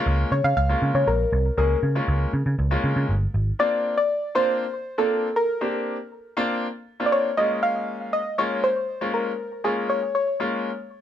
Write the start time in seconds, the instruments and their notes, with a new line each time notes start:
Already playing: grand piano G#3 A#3 C#4 F4
0.06 picked electric bass C#2
0.32 picked electric bass C#3, synth pluck C#5
0.44 picked electric bass C#3, synth pluck F5
0.57 picked electric bass C#2, synth pluck F5
0.69 grand piano G#3 A#3 C#4 F4
0.82 picked electric bass C#3
0.95 picked electric bass C#3, synth pluck C#5
1.07 picked electric bass A#1, synth pluck A#4
1.32 picked electric bass C2
1.58 picked electric bass C#2, grand piano G#3 A#3 C#4 G#4, synth pluck A#4
1.83 picked electric bass C#3
1.95 grand piano G#3 A#3 C#4 F4
2.08 picked electric bass C#2
2.33 picked electric bass C#3
2.46 picked electric bass C#3
2.59 picked electric bass C#2
2.71 grand piano G#3 A#3 C#4 F4
2.84 picked electric bass C#3
2.96 picked electric bass C#3
3.09 picked electric bass G1
3.34 picked electric bass G#1
3.59 grand piano A#3 C4 D4 F4, synth pluck D5
3.98 synth pluck D5
4.35 grand piano A#3 C4 D4 F4, synth pluck C5
4.98 grand piano A#3 C4 D4 F4, synth pluck A4
5.36 synth pluck A#4
5.61 grand piano A#3 C4 D4 G4
6.37 grand piano A#3 C4 D4 F4
7.00 grand piano A#3 C4 D4 F4
7.06 synth pluck D5
7.12 synth pluck C#5
7.37 grand piano G#3 A#3 C#4 F4, synth pluck D#5
7.63 synth pluck F5
8.13 synth pluck D#5
8.38 grand piano G#3 A#3 C#4 F4, synth pluck C#5
8.64 synth pluck C5
9.01 grand piano G#3 A#3 C#4 F4
9.14 synth pluck A#4
9.64 grand piano G#3 A#3 C#4 F4, synth pluck G#4
9.90 synth pluck C#5
10.15 synth pluck C#5
10.40 grand piano G#3 A#3 C#4 F4